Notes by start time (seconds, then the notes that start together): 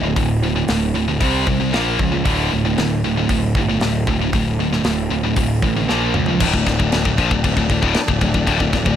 Already playing: D1
0.04 D2 A2
0.16 D1 D2 A2, kick, open hi-hat
0.43 D2 A2
0.56 D2 A2
0.68 D1 D2 A2, snare, open hi-hat
0.95 D1 D2 A2
1.08 D2 A2
1.20 C2 C3 G3 C4, kick, open hi-hat
1.47 C2 C3 G3, kick
1.60 C3 G3
1.73 A#1 A#2 F3 A#3, snare, open hi-hat
1.99 C#2 A#2 F3, kick
2.12 A#2 F3
2.25 D1 D2 A2 D3, kick, open hi-hat
2.52 D1 D2 A2
2.65 D2 A2
2.78 D1 D2 A2, snare, open hi-hat
3.04 D1 D2 A2
3.17 D2 A2
3.29 D1 D2 A2, kick, open hi-hat
3.55 G1 D2 A2, kick
3.70 D2 A2
3.81 D1 D2 A2, snare, open hi-hat
4.07 D1 D2 A2, kick
4.21 D2 A2
4.33 D1 D2 A2, kick, open hi-hat
4.60 D2 A2
4.72 D2 A2, snare
4.84 D1 D2 A2, snare, open hi-hat
5.11 D1 D2 A2
5.24 D2 A2
5.36 D1 D2 A2, kick, open hi-hat
5.62 A1 D2 A2, kick
5.76 D2 A2
5.89 A#1 A#2 F3 A#3, snare
6.14 C#2 A#2 F3, mid tom
6.26 A#2 F3, floor tom
6.40 D1 D2 A2 F3 D4 A4 D5, kick, crash
6.53 D1 D2 A2, kick
6.66 D1 D2 A2, kick, snare, crash
6.79 D1 D2 A2, kick
6.92 D1 D2 A2, snare, crash
7.05 D1 D2 A2, kick
7.18 A#1 A#2 F3, kick, crash
7.31 D1 D2 A2, kick
7.44 D1 D2 A2, kick, crash
7.57 D1 D2 A2, kick
7.69 D1 D2 A2, kick, crash
7.82 D1 D2 A2, kick
7.94 snare, crash
8.08 D1 D2 A2, kick
8.21 D1 D2 A2, kick, crash
8.34 D1 D2 A2, kick
8.46 D1 D2 A2, kick, crash
8.60 D1 D2 A2, kick
8.73 D1 D2 A2, kick, snare, crash
8.86 D1 D2 A2, kick